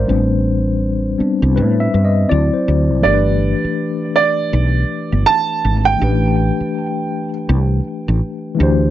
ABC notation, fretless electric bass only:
X:1
M:4/4
L:1/16
Q:"Swing 16ths" 1/4=81
K:Dm
V:1 name="Fretless electric bass" clef=bass
A,,,6 z C,, A,,2 G,,2 D,, z D,, C,, | [K:Gmix] G,,,3 z4 z B,,,2 z G,,, z2 ^G,,,2 | A,,,3 z4 z C,,2 z A,,, z2 D,,2 |]